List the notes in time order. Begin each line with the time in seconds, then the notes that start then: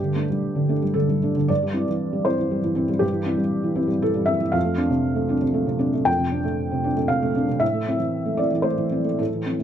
Already playing: G2 G4
0.02 D3
0.15 A3 D4
0.30 G3
0.56 D3
0.69 A3 D4
0.82 G3
0.94 D3 A4
1.09 G3
1.23 A3 D4
1.36 D3
1.48 G2 D5
1.63 G3
1.74 C4 E4
1.89 E3
2.13 G3
2.25 C4 E4 C5
2.39 E3
2.51 G3
2.64 E3
2.75 C4 E4
2.89 G3
2.99 G2 G4
3.13 E3
3.26 C4 E4
3.37 G3
3.64 E3
3.75 C4 E4
3.88 G3
4.02 E3 A4
4.16 G3
4.26 C4 E4 E5
4.40 E3
4.52 F2 F5
4.65 A3
4.77 C4 D4
4.90 C3
5.15 A3
5.29 C4 D4
5.42 C3
5.54 A3
5.67 C3
5.79 C4 D4
5.94 A3
6.05 F2 G5
6.18 C3
6.31 C4 D4
6.44 A3
6.72 C3
6.84 C4 D4
6.96 A3
7.08 C3 F5
7.22 A3
7.35 C4 D4
7.47 C3
7.60 A2 E5
7.74 A3
7.87 C4 E4
7.99 E3
8.26 A3
8.37 C4 E4 D5
8.52 E3
8.62 A3 C5
8.78 E3
8.92 C4 E4
9.04 A3
9.18 A2 A4
9.34 E3
9.46 C4 E4
9.59 A3